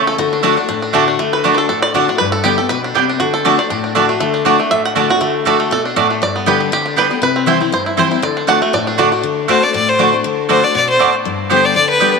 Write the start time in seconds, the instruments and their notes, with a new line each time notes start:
Already playing: steel-string acoustic guitar C#3, five-string banjo A3
0.07 five-string banjo A4
0.18 steel-string acoustic guitar D3, five-string banjo F#4
0.33 five-string banjo D4
0.43 steel-string acoustic guitar D3 A3 D4 F#4, mandolin A3 F#4 D5 A5, five-string banjo D4
0.57 five-string banjo D4, steel-string acoustic guitar D4 F#4
0.69 steel-string acoustic guitar A2, five-string banjo D4
0.82 five-string banjo D4
0.93 steel-string acoustic guitar D3 A3 D4 F#4, mandolin A3 F#4 D5 A5, five-string banjo A3
1.08 five-string banjo D4
1.19 steel-string acoustic guitar D3, five-string banjo A3
1.33 five-string banjo B4
1.44 steel-string acoustic guitar D3 A3 D4 F#4, mandolin A3 F#4 D5 A5, five-string banjo D4
1.54 five-string banjo A4 B4
1.69 steel-string acoustic guitar A2, five-string banjo A4
1.82 five-string banjo D5
1.94 steel-string acoustic guitar D3 A3 D4 F#4, mandolin A3 F#4 D5 A5, five-string banjo D4
2.08 five-string banjo D4, steel-string acoustic guitar D4 F#4
2.18 steel-string acoustic guitar G2, five-string banjo B4
2.32 five-string banjo A4
2.44 steel-string acoustic guitar D3 G3 B3 G4, mandolin B3 G4 D5 G5, five-string banjo G4
2.58 steel-string acoustic guitar B3 G4, five-string banjo A4
2.69 steel-string acoustic guitar B2, five-string banjo B4
2.84 five-string banjo D4
2.95 steel-string acoustic guitar C3, five-string banjo G3, mandolin B3 G4 D5 G5
3.09 five-string banjo D4
3.20 steel-string acoustic guitar D3, five-string banjo F#4
3.34 five-string banjo A4
3.45 steel-string acoustic guitar D3 A3 D4 F#4, mandolin A3 F#4 D5 A5, five-string banjo D4
3.58 steel-string acoustic guitar D4 F#4, five-string banjo D5
3.70 steel-string acoustic guitar A2, five-string banjo D4
3.84 five-string banjo D4
3.95 steel-string acoustic guitar D3 A3 D4 F#4, mandolin A3 F#4 D5 A5, five-string banjo D4
4.09 five-string banjo A3, steel-string acoustic guitar D4 F#4
4.20 steel-string acoustic guitar D3, five-string banjo A3
4.34 five-string banjo D4
4.45 steel-string acoustic guitar D3 A3 D4 F#4, mandolin A3 F#4 D5 A5, five-string banjo D4
4.58 five-string banjo A3, steel-string acoustic guitar D4 F#4
4.71 steel-string acoustic guitar A2, five-string banjo E5
4.85 five-string banjo F#5
4.95 steel-string acoustic guitar D3 A3 D4 F#4, mandolin A3 F#4 D5 A5, five-string banjo D4
5.09 steel-string acoustic guitar D4 F#4, five-string banjo F#4
5.21 steel-string acoustic guitar D3, five-string banjo A3
5.45 steel-string acoustic guitar D3 A3 D4 F#4, mandolin A3 F#4 D5 A5, five-string banjo A4
5.60 five-string banjo A3
5.71 steel-string acoustic guitar B2, five-string banjo A4
5.85 five-string banjo D4
5.96 steel-string acoustic guitar A2, mandolin A3 F#4 D5 A5, five-string banjo D4
6.10 five-string banjo A3
6.22 steel-string acoustic guitar G2, five-string banjo D5
6.36 five-string banjo B3
6.46 steel-string acoustic guitar D3 G3 B3 G4, mandolin B3 G4 D5 G5, five-string banjo B4
6.60 five-string banjo G3
6.72 steel-string acoustic guitar D3, five-string banjo G4
6.86 five-string banjo D4
6.96 steel-string acoustic guitar D3 G3 B3 G4, mandolin B3 G4 D5 G5, five-string banjo B4
7.10 five-string banjo G3, steel-string acoustic guitar B3 G4
7.22 steel-string acoustic guitar C3, five-string banjo B4
7.36 five-string banjo C4
7.46 steel-string acoustic guitar E3 G3 C4 E4, mandolin C4 E4 C5 G5, five-string banjo E4
7.60 five-string banjo C4, steel-string acoustic guitar C4 E4
7.72 steel-string acoustic guitar G2, five-string banjo C5
7.86 five-string banjo E4
7.97 steel-string acoustic guitar E3 G3 C4 E4, mandolin C4 E4 C5 G5, five-string banjo C5
8.11 steel-string acoustic guitar C4 E4, five-string banjo E4
8.22 steel-string acoustic guitar D3, five-string banjo D5
8.37 five-string banjo D4
8.47 steel-string acoustic guitar D3 A3 D4 F#4, mandolin A3 F#4 D5 A5, five-string banjo F#5
8.62 five-string banjo A3, steel-string acoustic guitar D4 F#4
8.73 steel-string acoustic guitar A2, five-string banjo D5
8.87 five-string banjo D4
8.98 steel-string acoustic guitar D3 A3 D4 F#4, mandolin A3 F#4 D5 A5, five-string banjo F#4
9.12 five-string banjo D4, steel-string acoustic guitar D4 F#4
9.23 steel-string acoustic guitar D3
9.48 steel-string acoustic guitar D3 A3 D4 F#4, mandolin A3 F#4 D5 A5, fiddle C5
9.62 steel-string acoustic guitar D4 F#4, fiddle D5
9.74 steel-string acoustic guitar A2, fiddle D5
9.88 fiddle C5
9.99 steel-string acoustic guitar D3 A3 D4 F#4, mandolin A3 F#4 D5 A5
10.13 steel-string acoustic guitar D4 F#4
10.24 steel-string acoustic guitar D3
10.49 steel-string acoustic guitar D3 A3 D4 F#4, mandolin A3 F#4 D5 A5, fiddle C5
10.63 steel-string acoustic guitar D4 F#4, fiddle D5
10.75 steel-string acoustic guitar B2, fiddle D5
10.89 fiddle C5
10.99 steel-string acoustic guitar A2, mandolin A3 F#4 D5 A5
11.25 steel-string acoustic guitar G2
11.50 steel-string acoustic guitar D3 G3 B3 G4, mandolin B3 G4 D5 G5, fiddle C5
11.65 fiddle D5
11.75 steel-string acoustic guitar D3, fiddle D5
11.89 fiddle B4
12.00 steel-string acoustic guitar D3 G3 B3 G4, mandolin B3 G4 D5 G5
12.14 steel-string acoustic guitar B3 G4